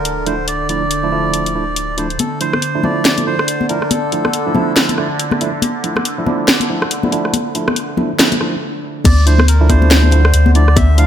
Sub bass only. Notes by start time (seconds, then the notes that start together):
Already playing: D1
2.19 D2
3.48 D2
4.34 D2
4.76 D2
5.41 D2
5.62 D2
6.91 D2
7.76 D2
8.19 D2
9.05 D2
10.34 D2